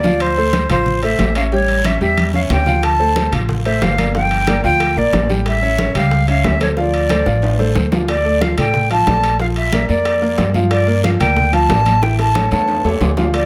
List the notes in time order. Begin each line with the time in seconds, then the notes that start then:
Already playing: D2 D5
0.03 F3 F4 F5, high conga, short guiro
0.20 C5, high conga, high timbale, long guiro
0.37 A3 A4 C5, high conga
0.53 A3 A4 C5, high conga, high timbale, low timbale, short guiro
0.69 A1 F3 F4 C5 F5, high conga, low conga, high timbale, short guiro
0.86 high conga, low conga, long guiro
1.02 A3 A4 C5 E5, high conga, high timbale
1.18 A1, high conga, high timbale, low timbale, short guiro
1.35 C#4 C#5 E5 F5, high timbale, short guiro
1.52 G3 G4 C#5 G5, high conga, long guiro
1.68 high conga, high timbale
1.84 C#4 C#5 E5, high conga, high timbale, low timbale, short guiro
2.01 E2 G3 G4 E5 G5, high conga, short guiro
2.17 high conga, high timbale, long guiro
2.34 C#4 C#5 E5 F5, high conga
2.50 D2 G5, low conga, high timbale, low timbale, short guiro
2.66 F3 F4 F5, low conga, short guiro
2.83 A5, high bongo, high conga, high timbale, long guiro
2.99 A3 A4 C5, high conga
3.16 A3 A4 C5, high bongo, high conga, high timbale, low timbale, short guiro
3.32 A1 F3 F4 F5, high conga, low conga, high timbale, short guiro
3.49 high bongo, high conga, low conga, long guiro
3.65 A3 A4 C5 E5, high conga, high timbale
3.82 G1 F5, high bongo, low bongo, high conga, high timbale, low timbale, short guiro
3.98 A#3 A#4 D5, high conga, high timbale, short guiro
4.15 F3 F4 F5 G5, high bongo, long guiro
4.31 high bongo, high conga, high timbale
4.47 A#3 A#4 D5, high bongo, high conga, high timbale, low timbale, short guiro
4.64 D2 F3 F4 F5 G5, high bongo, high conga, short guiro
4.80 high bongo, high conga, high timbale, long guiro
4.96 A#1 A#3 A#4 D5, high bongo, high conga
5.13 A1, high bongo, low bongo, high conga, high timbale, low timbale, short guiro
5.29 G3 G4 G5, high conga, short guiro
5.46 E5, high bongo, high timbale, long guiro
5.62 C#4 C#5 E5, high conga
5.78 C#4 C#5 E5, high bongo, high conga, high timbale, low timbale, short guiro
5.95 C#2 G3 G4 F5 G5, high conga, low conga, high timbale, short guiro
6.11 high bongo, high conga, long guiro
6.28 C#4 C#5 E5 F5, high conga, high timbale
6.44 D2 E5, high bongo, low bongo, high conga, high timbale, low timbale, short guiro
6.60 A3 A4 C5 C#5, high conga, high timbale, short guiro
6.77 F3 F4 D5 F5, high bongo, high conga, long guiro
6.93 high conga, high timbale
7.09 A3 A4 C5, high conga, high timbale, low timbale, short guiro
7.26 A1 F3 F4 F5, low bongo, high conga, short guiro
7.42 high conga, high timbale, long guiro
7.59 A3 A4 C5, low bongo, high conga
7.75 D2, low bongo, high conga, short guiro
7.92 F3 F4 F5, low bongo, high conga, low timbale, short guiro
8.08 D5, high bongo, high conga, high timbale, long guiro
8.25 A3 A4 D5, high conga
8.41 F3 F4 F5, high bongo, high conga, high timbale, low timbale, short guiro
8.57 A1 A3 A4 D5 G5, high conga, low conga, high timbale, short guiro
8.74 high bongo, high conga, low conga, long guiro
8.90 F3 F4 F5 A5, high conga, high timbale
9.06 A#1 A3 A4 D5, high bongo, low bongo, high conga, high timbale, low timbale, short guiro
9.23 high timbale, short guiro
9.40 F3 F4 F5, high bongo, high conga, long guiro
9.56 E5, high bongo, high conga, high timbale
9.72 A#3 A#4 D5, high bongo, high conga, high timbale, low timbale, short guiro
9.89 F2 A#3 A#4 D5, high bongo, high conga, short guiro
10.05 high bongo, high conga, high timbale, long guiro
10.21 A#3 A#4 D5, high bongo, high conga
10.38 G2, high bongo, low bongo, high conga, high timbale, low timbale, short guiro
10.54 F3 F4 F5, high conga, short guiro
10.71 D5, high bongo, high conga, high timbale, long guiro
10.87 A#3 A#4 D5, high conga
11.03 F3 F4 F5, high bongo, high conga, high timbale, low timbale, short guiro
11.20 D2 A#3 A#4 D5 G5, high conga, low conga, high timbale, short guiro
11.36 high bongo, high conga, low conga, long guiro
11.53 F3 F4 F5 A5, high conga, high timbale
11.69 A1 A#3 A#4 D5, high bongo, low bongo, high conga, high timbale, low timbale, short guiro
11.85 high conga, high timbale, short guiro
12.02 E3 E4 E5 G5, high bongo, high conga, long guiro
12.19 A5, high bongo, high conga, high timbale
12.35 A3 A4 C#5, low bongo, high conga, high timbale, low timbale, short guiro
12.51 E2 A3 A4 C#5 A5, low bongo, high timbale, short guiro
12.68 high conga, high timbale, long guiro
12.84 E2 A3 A4 C#5, high conga, low timbale
13.00 D2, low bongo, high conga, low timbale, short guiro
13.17 F3 F4 F5, low bongo, high conga, low timbale, short guiro
13.34 D5, high bongo, high conga, high timbale, long guiro